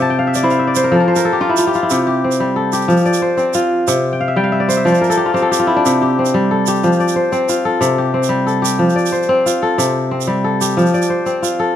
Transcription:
Already playing: C3 F4 G4
0.02 A5
0.10 G5
0.19 F5
0.27 E5
0.34 D5, shaker
0.43 E4 C5
0.50 F5, shaker
0.59 E5
0.67 D5
0.75 C5, shaker
0.84 A#4
0.92 F3 A4
1.00 A#4
1.08 C5
1.16 A#4, shaker
1.25 A4
1.33 G4
1.41 F4
1.49 E4
1.57 F4, shaker
1.67 G4
1.74 F4, shaker
1.83 E4
1.90 C3, shaker
2.07 G4
2.24 C4
2.31 shaker
2.40 G3
2.56 A4
2.72 G4, shaker
2.81 shaker
2.88 F3, shaker
2.97 shaker
3.05 D5, shaker
3.13 shaker
3.22 C5
3.37 C4, shaker
3.53 F4, shaker
3.88 C3, shaker
4.13 G5
4.21 F5
4.28 E5
4.36 G3 G5
4.44 F5
4.52 E5
4.60 D5
4.69 C5, shaker
4.77 E5
4.85 F3 D5, shaker
4.92 C5, shaker
5.01 A#4, shaker
5.10 A4, shaker
5.17 G4
5.26 F4
5.34 C4 G4, shaker
5.42 A4
5.51 G4, shaker
5.59 F4
5.67 E4
5.76 D4
5.86 C3, shaker
6.02 G4
6.19 C4
6.26 shaker
6.34 G3
6.51 A4
6.66 G4, shaker
6.83 F3, shaker
6.92 shaker
7.00 D5, shaker
7.08 shaker
7.16 C5
7.32 C4, shaker
7.49 F4, shaker
7.65 A4
7.81 C3, shaker
7.98 G4
8.14 C4
8.23 shaker
8.29 G3
8.47 A4, shaker
8.62 G4, shaker
8.79 F3
8.90 shaker
8.96 D5, shaker
9.06 shaker
9.12 C5, shaker
9.23 shaker
9.29 C4
9.46 F4, shaker
9.62 A4
9.78 C3, shaker
10.11 C4
10.21 shaker
10.27 G3
10.44 A4
10.61 G4, shaker
10.77 F3, shaker
10.86 shaker
10.94 D5, shaker
11.02 shaker
11.10 C5
11.26 C4, shaker
11.42 F4, shaker
11.60 A4

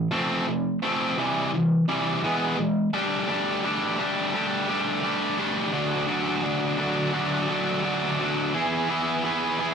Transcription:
0.11 F3 A3 C4
0.47 F3 A3
0.83 F3 A3 C4
1.18 C3 E3 G3
1.54 C3 E3
1.89 C3 E3 G3
2.24 E3 G#3 B3
2.58 E3 G#3
2.93 G3 A3 D4 G4
3.28 G3 A3 D4 G4
3.64 G3 A3 D4 G4
3.99 G3 A3 D4 G4
4.34 G3 A3 D4 G4
4.68 G3 A3 D4 G4
5.03 G3 A3 D4 G4
5.38 G3 A3 D4 G4
5.72 D3 F#3 A3 D4 F#4
6.07 D3 F#3 A3 D4 F#4
6.42 D3 F#3 A3 D4 F#4
6.78 D3 F#3 A3 D4 F#4
7.12 D3 F#3 A3 D4 F#4
7.48 D3 F#3 A3 D4 F#4
7.83 D3 F#3 A3 D4 F#4
8.19 D3 F#3 A3 D4 F#4
8.53 E3 B3 E4 G#4
8.89 E3 B3 E4 G#4
9.23 E3 B3 E4 G#4
9.59 E3 B3 E4 G#4

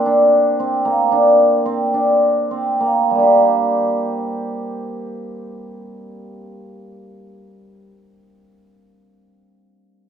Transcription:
Already playing: A#3 C4
0.06 D4
0.60 C4
0.85 A#3
1.12 D4
1.66 C4
1.94 D4
2.51 C4
2.80 A#3
3.11 G3
3.15 A#3 D4
3.23 G4

